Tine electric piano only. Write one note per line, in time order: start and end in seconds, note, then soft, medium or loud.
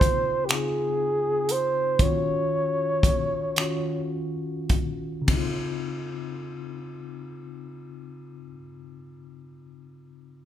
0.00 0.33 C#3 medium
0.00 0.34 C4 medium
0.00 0.35 D#4 medium
0.00 0.39 F4 medium
0.50 1.82 C#3 soft
0.50 1.83 C4 soft
0.50 1.83 D#4 soft
0.50 1.84 F4 medium
1.99 3.39 D#3 medium
1.99 3.40 C#4 medium
1.99 3.40 F4 medium
1.99 3.41 F#4 medium
3.57 5.08 D#3 medium
3.57 5.09 C#4 medium
3.57 5.10 F4 medium
3.57 5.10 F#4 medium
5.22 8.38 C#3 medium
5.27 8.43 C4 medium
5.32 8.48 D#4 medium
5.37 8.54 F4 medium